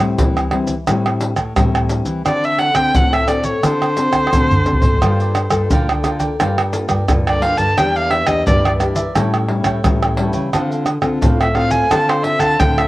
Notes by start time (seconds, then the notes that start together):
Already playing: A2
0.00 A2 G3 C4 E4
0.18 E3, pandeiro, maracas, surdo
0.37 pandeiro, tamborim, maracas
0.51 G3 C4 E4, pandeiro, tamborim, surdo
0.67 pandeiro, maracas, surdo
0.87 A2 G3 C4 E4, pandeiro, tamborim, maracas, surdo
1.06 pandeiro, tamborim, maracas
1.20 pandeiro, maracas
1.36 A2, pandeiro, tamborim, maracas, surdo
1.56 A2 E3 G3 C4 E4, pandeiro, tamborim, maracas, surdo
1.75 pandeiro, tamborim, maracas
1.89 pandeiro, maracas
2.05 E3, pandeiro, maracas, surdo
2.25 D3 C4 F#4 A4 D5, pandeiro, tamborim, maracas, surdo
2.44 E5, pandeiro, maracas
2.59 F#5, pandeiro, tamborim
2.74 D3 C4 F#4 A4 G5, pandeiro, tamborim, maracas, surdo
2.94 A2 F#5, pandeiro, maracas, surdo
3.13 E5, pandeiro, tamborim, maracas
3.27 C4 F#4 A4 D5, pandeiro, tamborim, maracas, surdo
3.44 C#5, pandeiro, maracas, surdo
3.63 D3 C4 F#4 A4 C5, pandeiro, tamborim, maracas, surdo
3.82 pandeiro, tamborim, maracas
3.97 C4 F#4 A4, pandeiro, maracas
4.12 D3, pandeiro, tamborim, maracas, surdo
4.27 tamborim
4.33 A2 D3 C4 F#4 A4, pandeiro, maracas, surdo
4.51 surdo, pandeiro, maracas
4.65 C4 F#4 A4, pandeiro, maracas
4.73 surdo
4.81 G#2, pandeiro, maracas, surdo
4.96 surdo
5.01 G2 G3 A#3 F4 A4 A#4 D5 G5, pandeiro, tamborim, maracas, surdo
5.20 A#4 D5 G5, pandeiro, maracas
5.35 muted cavaquinho stroke, pandeiro, tamborim, maracas
5.50 G2 A#3 F4 A4, pandeiro, tamborim, maracas, surdo
5.70 D3 F4 A#4 D5 G5, pandeiro, maracas, surdo
5.89 A#4 D5 G5, pandeiro, tamborim, maracas
6.03 A#3 F4 A4 A#4 D5 G5, pandeiro, tamborim, maracas, surdo
6.19 A#4 D5 G5, pandeiro, maracas, surdo
6.39 G2 G3 A#3 F4 A4 A#4 D5 G5, pandeiro, tamborim, maracas, surdo
6.58 A#4 D5 G5, pandeiro, tamborim, maracas
6.72 A#3 F4 A4, muted cavaquinho stroke, pandeiro, maracas
6.88 G2 A#4 D5 G5, pandeiro, tamborim, maracas, surdo
7.08 G2 D3 A#3 F4 A4, pandeiro, tamborim, maracas, surdo
7.27 A#4 D5 G5, pandeiro, tamborim, maracas
7.41 A#3 F4 A4 A#4 D5 F5 G5, pandeiro
7.57 G2 A#4 D5 A5, pandeiro, maracas, surdo
7.77 E2 E3 A#3 D4 G4 A#4 D5 E5 G5, pandeiro, tamborim, maracas, surdo
7.96 A#4 D5 E5 F5, pandeiro, maracas
8.10 E5, muted cavaquinho stroke, pandeiro, tamborim
8.26 E2 A#3 D4 G4 D#5, pandeiro, tamborim, maracas, surdo
8.46 G2 E3 G4 A#4 D5 E5, pandeiro, maracas, surdo
8.64 A#4 D5 E5, pandeiro, tamborim, maracas
8.79 A#3 D4 G4 A#4 D5 E5, pandeiro, tamborim, maracas, surdo
8.95 A#4 D5 E5, pandeiro, maracas, surdo
9.15 A2 G3 C#4 E4 A4 C#5 G5, pandeiro, tamborim, maracas, surdo
9.33 A4 C#5 G5, pandeiro, tamborim, maracas
9.49 G3 C#4 E4, muted cavaquinho stroke, pandeiro
9.64 A2 A4 C#5 G5, pandeiro, tamborim, maracas, surdo
9.84 A2 E3 G3 C#4 E4, pandeiro, tamborim, maracas, surdo
10.02 A4 C#5 G5, pandeiro, tamborim, maracas
10.17 G3 C#4 E4 A4 C#5 G5, pandeiro
10.33 C#3 A4 C#5 G5, pandeiro, maracas, surdo
10.53 D3 C4 D4 F4 A4 C5 F5, pandeiro, tamborim, maracas, surdo
10.70 A4 C5 F5, pandeiro, maracas
10.86 muted cavaquinho stroke, pandeiro, tamborim, maracas
11.02 D3 C4 F4 A4, pandeiro, tamborim, maracas, surdo
11.21 A2 D4 A4 C5 F5, pandeiro, maracas, surdo
11.40 A4 C5 E5 F5, pandeiro, tamborim, maracas
11.54 C4 D4 F4 A4 C5 F5, pandeiro, tamborim, maracas
11.70 A4 C5 F5 G#5, pandeiro, maracas, surdo
11.90 D3 C4 D4 F4 A4 C5 F5 A5, pandeiro, tamborim, maracas, surdo
12.09 A4 C5 F5, pandeiro, tamborim, maracas
12.23 C4 F4 A4 E5, muted cavaquinho stroke, pandeiro
12.39 D3 A4 C5 F5 A5, pandeiro, tamborim, maracas, surdo
12.59 A2 D3 C4 F4 A4 G5, pandeiro, tamborim, maracas, surdo
12.78 A4 C5 E5 F5, pandeiro, tamborim, maracas